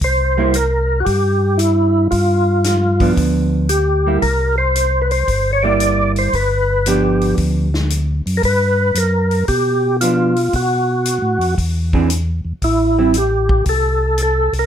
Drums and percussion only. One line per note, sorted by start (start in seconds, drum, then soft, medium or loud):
0.01 kick soft
0.01 open hi-hat soft
0.54 closed hi-hat medium
1.06 kick soft
1.06 open hi-hat soft
1.59 closed hi-hat soft
2.11 kick soft
2.11 open hi-hat soft
2.64 snare soft
2.64 closed hi-hat medium
3.00 kick medium
3.00 open hi-hat soft
3.17 kick soft
3.17 open hi-hat soft
3.69 closed hi-hat medium
4.22 kick soft
4.22 open hi-hat soft
4.75 closed hi-hat medium
5.11 open hi-hat soft
5.28 kick soft
5.28 open hi-hat soft
5.80 closed hi-hat medium
6.16 open hi-hat soft
6.33 kick soft
6.33 open hi-hat soft
6.86 closed hi-hat medium
7.21 open hi-hat soft
7.38 kick soft
7.38 open hi-hat soft
7.74 snare soft
7.90 closed hi-hat medium
8.27 open hi-hat soft
8.43 kick soft
8.43 open hi-hat soft
8.95 closed hi-hat medium
9.31 open hi-hat soft
9.48 kick soft
9.48 open hi-hat soft
10.01 closed hi-hat medium
10.36 open hi-hat soft
10.53 kick soft
10.53 open hi-hat soft
11.05 closed hi-hat medium
11.41 open hi-hat soft
11.58 kick soft
11.58 open hi-hat soft
11.93 kick soft
12.10 closed hi-hat medium
12.62 kick soft
12.62 open hi-hat soft
13.14 closed hi-hat medium
13.49 kick medium
13.65 kick soft
13.65 open hi-hat soft
14.18 closed hi-hat soft
14.53 open hi-hat soft